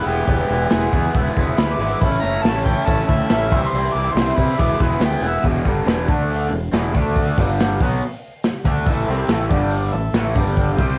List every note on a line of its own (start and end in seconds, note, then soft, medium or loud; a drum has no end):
0.06 0.22 E1 loud
0.06 0.29 E3 medium
0.06 0.29 G#3 medium
0.06 0.28 B3 loud
0.06 0.25 E4 medium
0.06 0.30 E4 loud
0.06 0.74 G4 loud
0.06 0.26 G#4 medium
0.06 0.26 B4 medium
0.28 0.43 E1 loud
0.28 0.50 E3 loud
0.28 0.51 G#3 loud
0.28 0.51 B3 loud
0.28 0.46 E4 loud
0.28 0.51 E4 loud
0.28 0.47 G#4 loud
0.28 0.47 B4 loud
0.28 kick loud
0.28 open hi-hat medium
0.50 0.65 E1 medium
0.50 0.71 E3 medium
0.50 0.70 G#3 medium
0.50 0.71 B3 medium
0.50 0.68 E4 medium
0.50 0.73 E4 loud
0.50 0.68 G#4 medium
0.50 0.69 D5 medium
0.70 0.87 E1 medium
0.70 0.92 E3 loud
0.70 0.92 G#3 loud
0.70 0.93 B3 loud
0.70 0.90 E4 medium
0.70 0.93 E4 loud
0.70 0.89 G#4 medium
0.70 1.14 G#4 loud
0.70 0.90 B4 medium
0.70 snare loud
0.70 open hi-hat medium
0.92 1.08 E2 loud
0.92 1.14 E3 medium
0.92 1.13 G#3 medium
0.92 1.14 B3 loud
0.92 1.11 E4 medium
0.92 1.16 E4 loud
0.92 1.11 G#4 medium
0.92 1.12 B4 medium
0.92 kick loud
1.13 1.29 E1 loud
1.13 1.36 E3 loud
1.13 1.36 G#3 loud
1.13 1.36 B3 loud
1.13 1.32 E4 medium
1.13 1.38 E4 loud
1.13 1.32 G#4 medium
1.13 1.32 B4 loud
1.13 kick loud
1.13 open hi-hat medium
1.36 1.52 E1 medium
1.36 1.57 E3 medium
1.36 1.57 G#3 loud
1.36 1.56 B3 loud
1.36 1.55 E4 medium
1.36 1.58 E4 loud
1.36 1.54 G#4 medium
1.36 1.55 B4 loud
1.36 kick medium
1.57 1.73 D2 loud
1.57 1.79 E3 loud
1.57 1.79 G#3 loud
1.57 1.80 B3 loud
1.57 1.75 E4 medium
1.57 1.81 E4 loud
1.57 1.76 G#4 medium
1.57 1.76 B4 medium
1.57 1.76 B5 loud
1.57 snare loud
1.57 open hi-hat medium
1.74 2.02 D6 medium
1.79 1.94 G#1 loud
1.79 2.01 E3 medium
1.79 2.00 G#3 medium
1.79 2.00 B3 loud
1.79 1.97 E4 medium
1.79 2.03 E4 loud
1.79 1.97 G#4 medium
1.79 1.97 B4 medium
2.01 2.16 A1 loud
2.01 2.22 A2 loud
2.01 2.23 E3 loud
2.01 2.22 A3 loud
2.01 2.23 C#4 loud
2.01 2.19 E4 loud
2.01 2.24 E4 loud
2.01 2.19 A4 medium
2.01 2.20 C#5 loud
2.01 2.23 B5 loud
2.01 kick loud
2.01 open hi-hat medium
2.21 2.38 F#1 medium
2.21 2.42 A2 medium
2.21 2.44 E3 medium
2.21 2.44 A3 loud
2.21 2.44 C#4 loud
2.21 2.46 E4 medium
2.21 2.41 E4 medium
2.21 2.44 A#5 loud
2.25 2.41 A4 medium
2.25 2.42 C#5 medium
2.43 2.74 A1 loud
2.43 2.66 A2 loud
2.43 2.67 E3 loud
2.43 2.66 A3 loud
2.43 2.66 C#4 loud
2.43 2.62 E4 medium
2.43 2.68 E4 loud
2.43 2.64 A5 loud
2.43 snare loud
2.43 open hi-hat medium
2.47 2.63 A4 medium
2.47 2.63 C#5 medium
2.64 2.86 A2 medium
2.64 2.87 E3 medium
2.64 2.88 A3 loud
2.64 2.87 C#4 medium
2.64 2.83 E4 medium
2.64 2.83 A4 medium
2.64 2.84 C#5 medium
2.64 2.87 G5 loud
2.64 kick medium
2.68 2.89 E4 medium
2.85 3.02 A1 loud
2.85 3.07 A2 loud
2.85 3.08 E3 loud
2.85 3.08 A3 loud
2.85 3.08 C#4 loud
2.85 3.03 E4 loud
2.85 3.10 E4 loud
2.85 3.03 A4 medium
2.85 3.04 C#5 loud
2.85 3.07 A5 loud
2.85 kick loud
2.85 open hi-hat medium
3.07 3.23 D2 medium
3.07 3.30 A2 loud
3.07 3.31 E3 medium
3.07 3.31 A3 loud
3.07 3.31 C#4 loud
3.07 3.25 E4 medium
3.07 3.33 E4 loud
3.07 3.25 A4 medium
3.07 3.26 C#5 medium
3.07 3.71 E5 loud
3.07 kick medium
3.29 3.52 A1 loud
3.29 3.50 A2 loud
3.29 3.54 E3 loud
3.29 3.51 A3 loud
3.29 3.51 C#4 loud
3.29 3.47 E4 medium
3.29 3.48 A4 medium
3.29 3.48 C#5 medium
3.29 snare loud
3.29 open hi-hat medium
3.34 3.55 E4 loud
3.52 3.66 C2 loud
3.52 3.73 C3 loud
3.52 3.75 E3 loud
3.52 3.75 G3 loud
3.52 3.75 C4 loud
3.52 3.87 E4 medium
3.52 3.75 E4 loud
3.52 3.87 G4 medium
3.52 3.88 C5 medium
3.52 kick loud
3.69 3.88 C2 loud
3.69 3.94 C6 loud
3.74 3.94 C3 medium
3.74 3.95 E3 loud
3.74 3.95 G3 loud
3.74 3.96 C4 loud
3.74 3.97 E4 loud
3.74 open hi-hat medium
3.93 4.09 C2 medium
3.93 4.16 C3 medium
3.93 4.17 E3 medium
3.93 4.17 G3 medium
3.93 4.12 E4 medium
3.93 4.15 D6 loud
3.97 4.18 C4 medium
3.97 4.18 E4 loud
3.97 4.13 G4 medium
3.97 4.13 C5 medium
4.13 4.30 C2 loud
4.13 4.33 E4 medium
4.13 4.33 G4 medium
4.13 4.33 C5 medium
4.13 4.37 C6 loud
4.13 snare loud
4.13 open hi-hat medium
4.17 4.37 C3 loud
4.17 4.37 E3 loud
4.17 4.38 G3 loud
4.17 4.39 C4 loud
4.17 4.39 E4 loud
4.36 4.52 C3 loud
4.36 4.57 C3 medium
4.36 4.57 E3 medium
4.36 4.58 G3 loud
4.36 4.55 E4 medium
4.36 4.58 E4 loud
4.36 4.55 G4 medium
4.36 4.56 C5 medium
4.36 4.62 B5 loud
4.36 kick medium
4.40 4.58 C4 loud
4.58 4.74 E1 loud
4.58 4.81 E3 loud
4.58 4.81 G#3 loud
4.58 4.81 B3 loud
4.58 4.76 E4 medium
4.58 4.81 E4 loud
4.58 4.76 G#4 medium
4.58 4.76 B4 loud
4.58 4.83 D6 loud
4.58 kick loud
4.58 open hi-hat medium
4.80 4.95 E1 medium
4.80 4.99 E3 medium
4.80 5.01 G#3 medium
4.80 5.00 B3 medium
4.80 4.97 E4 medium
4.80 5.02 E4 medium
4.80 4.97 G#4 medium
4.80 4.98 B4 medium
4.80 5.01 B5 medium
4.80 kick medium
5.00 5.15 D2 loud
5.00 5.21 E3 loud
5.00 5.22 G#3 loud
5.00 5.23 B3 loud
5.00 5.18 E4 medium
5.00 5.23 E4 loud
5.00 5.18 G#4 medium
5.00 5.18 B4 medium
5.00 snare loud
5.00 open hi-hat medium
5.05 5.24 G5 medium
5.21 5.36 E1 loud
5.21 5.42 E3 medium
5.21 5.43 G#3 medium
5.21 5.43 B3 medium
5.21 5.39 E4 medium
5.21 5.43 E4 medium
5.21 5.39 G#4 medium
5.21 5.40 B4 medium
5.28 5.46 E5 loud
5.43 5.63 E1 medium
5.43 5.64 E2 loud
5.43 5.65 B2 loud
5.43 5.65 E3 loud
5.43 kick loud
5.43 open hi-hat medium
5.65 5.85 G1 loud
5.65 5.85 G2 medium
5.65 5.86 D3 medium
5.65 5.87 G3 loud
5.65 kick loud
5.85 6.06 E1 loud
5.85 6.07 E2 medium
5.85 6.07 B2 loud
5.85 6.08 E3 loud
5.85 snare loud
5.85 open hi-hat medium
6.08 6.48 D2 loud
6.08 6.49 D3 medium
6.08 6.50 A3 loud
6.08 6.51 D4 loud
6.08 kick loud
6.30 open hi-hat medium
6.48 6.71 E1 medium
6.48 6.67 E2 medium
6.48 6.67 B2 medium
6.71 6.92 E1 loud
6.71 6.93 E2 loud
6.71 6.93 B2 loud
6.71 6.93 E3 loud
6.71 snare loud
6.71 open hi-hat medium
6.93 7.33 D2 loud
6.93 7.35 D3 medium
6.93 7.36 A3 loud
6.93 7.36 D4 loud
6.93 kick loud
7.16 kick loud
7.16 open hi-hat medium
7.37 7.77 G1 loud
7.37 7.79 G2 medium
7.37 7.79 D3 loud
7.37 7.80 G3 loud
7.37 kick loud
7.60 snare loud
7.60 open hi-hat medium
7.80 8.00 B1 loud
7.80 8.01 B2 medium
7.80 8.01 F#3 loud
7.80 8.01 B3 loud
7.80 kick loud
8.02 open hi-hat medium
8.43 snare loud
8.43 open hi-hat medium
8.64 8.84 D2 loud
8.64 8.86 D3 loud
8.64 8.87 A3 loud
8.64 8.87 D4 loud
8.64 kick loud
8.85 9.06 A1 medium
8.85 9.03 E4 loud
8.85 9.04 A4 loud
8.85 9.04 E5 loud
8.85 kick loud
8.85 open hi-hat medium
8.89 9.08 A2 loud
8.89 9.08 E3 loud
8.89 9.09 A3 loud
9.07 9.27 C2 loud
9.07 9.30 C3 loud
9.07 9.30 G3 medium
9.07 9.25 E4 medium
9.07 9.25 A4 medium
9.07 9.26 E5 medium
9.11 9.30 C4 loud
9.26 9.48 A1 loud
9.26 9.50 A2 loud
9.26 9.45 E4 medium
9.26 9.46 A4 medium
9.26 9.46 E5 medium
9.26 snare loud
9.26 open hi-hat medium
9.32 9.51 E3 loud
9.32 9.51 A3 loud
9.48 9.90 G1 loud
9.48 9.93 G2 medium
9.48 9.93 D3 loud
9.48 9.93 G3 medium
9.48 9.85 D4 medium
9.48 9.85 G4 medium
9.48 9.85 D5 loud
9.48 kick loud
9.71 open hi-hat medium
9.92 10.12 A1 medium
9.92 10.10 A2 medium
9.92 10.10 E3 medium
9.92 10.28 E4 medium
9.92 10.28 A4 medium
9.92 10.28 E5 loud
10.13 10.34 A1 loud
10.13 10.35 A2 loud
10.13 10.36 E3 loud
10.13 10.37 A3 loud
10.13 snare loud
10.13 open hi-hat medium
10.34 10.75 G1 loud
10.34 10.78 G2 loud
10.34 10.76 D3 loud
10.34 10.76 G3 loud
10.34 10.72 D4 medium
10.34 10.72 G4 medium
10.34 10.72 D5 loud
10.34 kick loud
10.57 kick loud
10.57 open hi-hat medium
10.76 10.98 C2 loud
10.76 10.98 C3 medium
10.76 10.98 G3 loud
10.76 10.98 C4 medium
10.76 10.98 C4 loud
10.76 10.98 G4 medium
10.76 10.98 C5 loud
10.76 kick loud